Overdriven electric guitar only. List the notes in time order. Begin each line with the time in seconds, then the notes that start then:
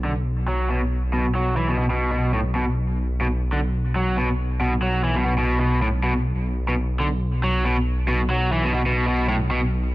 0.05 D3
0.48 F#3
0.69 B2
1.13 B2
1.35 F#3
1.57 E3
1.69 B2
1.78 B2
1.90 B2
2.12 B2
2.34 A2
2.55 B2
3.21 B2
3.53 D3
3.96 F#3
4.17 B2
4.61 B2
4.82 F#3
5.04 E3
5.16 B2
5.25 B2
5.38 B2
5.60 B2
5.82 A2
6.04 B2
6.69 B2
7.00 D3
7.44 F#3
7.65 B2
8.08 B2
8.30 F#3
8.52 E3
8.64 B2
8.74 B2
8.86 B2
9.07 B2
9.29 A2
9.51 B2